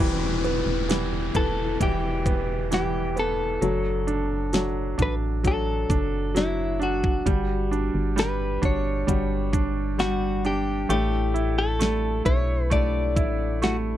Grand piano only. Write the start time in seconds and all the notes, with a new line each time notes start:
0.00 E3
0.44 B3
0.89 E3
1.35 B3
1.80 E3
2.26 B3
2.71 E3
3.16 B3
3.61 F#3
4.07 D4
4.53 F#3
4.98 D4
5.43 F#3
5.90 D4
6.34 F#3
6.80 D4
7.26 G3
7.71 D4
8.16 G3
8.62 D4
9.07 G3
9.53 D4
9.99 G3
10.45 D4
10.89 A3
11.34 E4
11.79 A3
12.25 E4
12.70 A3
13.16 E4
13.62 A3